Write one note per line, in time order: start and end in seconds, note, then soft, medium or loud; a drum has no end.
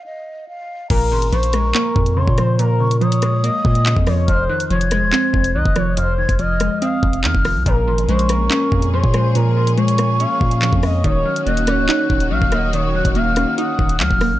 0.06 0.46 D#5 medium
0.48 0.88 F5 medium
0.90 1.13 A#1 loud
0.90 1.95 A#2 loud
0.90 1.30 A#4 loud
0.90 1.07 A#5 medium
0.90 kick loud
0.90 closed hi-hat medium
0.90 crash loud
1.11 1.31 G#1 loud
1.11 2.16 C#3 medium
1.11 1.28 C6 medium
1.22 closed hi-hat medium
1.32 1.73 A#1 loud
1.32 2.37 F3 medium
1.32 1.53 C5 medium
1.32 2.13 C#6 medium
1.32 closed hi-hat medium
1.43 closed hi-hat medium
1.53 2.60 G#3 medium
1.53 2.13 A#4 loud
1.53 cross-stick medium
1.53 closed hi-hat loud
1.75 2.80 A#3 loud
1.75 clap loud
1.96 2.26 F2 loud
1.96 2.58 A#2 medium
1.96 kick loud
2.06 closed hi-hat medium
2.17 2.79 C#3 medium
2.17 2.37 C#5 medium
2.17 2.56 C6 medium
2.28 3.50 A#2 loud
2.28 kick loud
2.38 3.00 F3 medium
2.38 2.58 C5 medium
2.38 cross-stick loud
2.38 closed hi-hat medium
2.59 3.64 A#2 loud
2.59 2.99 A#4 loud
2.59 2.76 A#5 medium
2.59 closed hi-hat medium
2.80 3.85 C#3 medium
2.80 2.97 C#6 loud
2.91 closed hi-hat medium
3.01 4.05 F3 medium
3.01 3.41 C#5 medium
3.01 3.96 D#6 loud
3.01 closed hi-hat soft
3.12 closed hi-hat medium
3.22 4.28 G#3 medium
3.22 cross-stick medium
3.22 closed hi-hat loud
3.44 4.28 A#3 loud
3.44 4.03 D#5 medium
3.44 closed hi-hat medium
3.65 3.95 A#2 loud
3.65 4.28 A#2 medium
3.65 kick loud
3.75 closed hi-hat medium
3.86 4.28 C#3 medium
3.86 clap loud
3.97 4.27 F2 loud
3.97 kick loud
4.07 4.28 F3 medium
4.07 4.27 C#5 medium
4.07 cross-stick loud
4.07 open hi-hat medium
4.28 4.49 F1 loud
4.28 5.32 F2 loud
4.28 4.68 C5 loud
4.28 4.44 F6 medium
4.28 kick loud
4.28 closed hi-hat medium
4.49 5.54 D#3 medium
4.49 4.66 F#6 medium
4.60 closed hi-hat medium
4.70 5.04 F1 loud
4.70 5.75 F3 medium
4.70 4.90 C#5 medium
4.70 5.51 G#6 medium
4.70 closed hi-hat medium
4.81 closed hi-hat medium
4.91 5.98 G#3 medium
4.91 5.51 C5 medium
4.91 cross-stick medium
4.91 closed hi-hat loud
5.02 5.12 D#1 loud
5.13 6.18 C4 loud
5.13 clap loud
5.33 5.57 F1 loud
5.33 5.96 F2 medium
5.33 kick medium
5.44 closed hi-hat medium
5.55 5.65 C2 loud
5.55 6.17 D#3 medium
5.55 5.75 D#5 medium
5.55 5.95 F#6 medium
5.66 6.26 F1 loud
5.66 kick loud
5.76 6.38 F3 medium
5.76 5.96 C#5 medium
5.76 cross-stick loud
5.76 closed hi-hat medium
5.97 7.02 F2 loud
5.97 6.37 C5 loud
5.97 6.14 F6 medium
5.97 closed hi-hat medium
6.18 7.23 D#3 medium
6.18 6.35 G#6 medium
6.29 6.69 F1 loud
6.29 kick loud
6.29 closed hi-hat medium
6.39 7.44 F3 medium
6.39 6.79 D#5 medium
6.39 6.79 F6 medium
6.39 closed hi-hat medium
6.60 7.66 G#3 medium
6.60 cross-stick medium
6.60 closed hi-hat medium
6.81 7.66 C4 loud
6.81 7.21 F5 medium
6.81 7.21 D#6 medium
6.81 closed hi-hat medium
7.03 7.25 F1 loud
7.03 7.66 F2 medium
7.03 kick loud
7.13 closed hi-hat medium
7.24 7.34 F2 loud
7.24 7.66 D#3 medium
7.24 7.64 F6 loud
7.24 clap loud
7.35 7.57 F1 loud
7.35 kick loud
7.45 7.66 F3 medium
7.45 cross-stick loud
7.45 open hi-hat medium
7.56 7.66 C2 loud
7.66 7.89 A#1 loud
7.66 8.71 A#2 loud
7.66 11.01 F3 medium
7.66 14.38 A#3 medium
7.66 14.38 C#4 medium
7.66 11.01 G#4 medium
7.66 8.06 A#4 loud
7.66 7.83 A#5 medium
7.66 kick loud
7.66 closed hi-hat medium
7.87 8.07 G#1 loud
7.87 8.92 F3 medium
7.87 8.04 C6 medium
7.98 closed hi-hat medium
8.09 8.49 A#1 loud
8.09 9.13 G#3 loud
8.09 8.29 C5 medium
8.09 8.89 C#6 loud
8.09 closed hi-hat medium
8.19 closed hi-hat medium
8.29 9.35 A#3 medium
8.29 8.89 A#4 medium
8.29 cross-stick medium
8.29 closed hi-hat medium
8.50 9.56 C#4 loud
8.50 clap loud
8.72 9.02 F2 loud
8.72 9.34 A#2 medium
8.72 kick medium
8.82 closed hi-hat medium
8.92 9.56 F3 medium
8.92 9.13 C#5 medium
8.92 9.32 C6 medium
9.04 10.26 A#2 loud
9.04 kick medium
9.14 9.76 G#3 medium
9.14 9.34 C5 medium
9.14 cross-stick loud
9.14 closed hi-hat medium
9.35 10.39 A#2 medium
9.35 9.75 A#4 loud
9.35 9.52 A#5 medium
9.35 closed hi-hat medium
9.56 10.61 F3 medium
9.56 9.73 C6 medium
9.67 closed hi-hat medium
9.77 10.82 G#3 medium
9.77 10.17 C#5 medium
9.77 10.76 C#6 loud
9.77 closed hi-hat soft
9.88 closed hi-hat medium
9.98 11.05 A#3 medium
9.98 cross-stick medium
9.98 closed hi-hat loud
10.20 11.04 C#4 medium
10.20 10.79 F5 medium
10.20 closed hi-hat medium
10.40 11.04 A#2 medium
10.40 10.71 A#2 loud
10.40 kick loud
10.51 closed hi-hat medium
10.62 11.04 F3 medium
10.62 clap loud
10.73 11.03 F2 loud
10.73 kick medium
10.83 11.05 G#3 medium
10.83 11.03 D#5 medium
10.83 cross-stick loud
10.83 open hi-hat medium
11.04 11.25 D#1 loud
11.04 14.39 D#3 medium
11.04 12.08 D#3 loud
11.04 14.39 F#4 medium
11.04 11.44 C#5 loud
11.04 11.21 D#6 medium
11.04 kick loud
11.04 closed hi-hat medium
11.25 12.30 F#3 medium
11.25 11.41 F6 medium
11.36 closed hi-hat medium
11.46 11.80 D#1 loud
11.46 12.51 A#3 medium
11.46 11.67 D#5 medium
11.46 12.27 F#6 medium
11.46 closed hi-hat medium
11.57 closed hi-hat medium
11.67 12.73 C#4 medium
11.67 12.27 C#5 medium
11.67 cross-stick medium
11.67 closed hi-hat medium
11.78 11.88 C#1 loud
11.89 12.94 D#4 loud
11.89 clap loud
12.09 12.33 D#1 loud
12.09 12.72 D#3 medium
12.09 kick loud
12.20 closed hi-hat medium
12.31 12.41 A#1 loud
12.31 12.94 F#3 medium
12.31 12.51 F5 medium
12.31 12.71 F6 medium
12.42 13.02 D#1 loud
12.42 kick loud
12.52 13.15 A#3 medium
12.52 12.72 D#5 medium
12.52 cross-stick medium
12.52 closed hi-hat medium
12.73 13.77 D#3 loud
12.73 13.13 C#5 loud
12.73 12.90 D#6 medium
12.73 closed hi-hat medium
12.95 14.00 F#3 medium
12.95 13.11 F#6 medium
13.05 13.46 D#1 loud
13.05 kick loud
13.05 closed hi-hat medium
13.15 14.20 A#3 medium
13.15 13.55 F5 medium
13.15 13.55 F6 medium
13.15 closed hi-hat medium
13.36 14.39 C#4 medium
13.36 cross-stick medium
13.36 closed hi-hat loud
13.58 14.39 D#4 loud
13.58 13.97 F#5 medium
13.58 13.98 D#6 medium
13.58 closed hi-hat medium
13.79 14.02 D#1 loud
13.79 14.39 D#3 medium
13.79 kick medium
13.89 closed hi-hat medium
14.00 14.10 D#2 loud
14.00 14.39 F#3 medium
14.00 14.39 F6 loud
14.00 clap loud
14.11 14.33 D#1 loud
14.11 kick medium
14.21 14.39 A#3 medium
14.21 cross-stick loud
14.21 open hi-hat medium
14.32 14.39 A#1 loud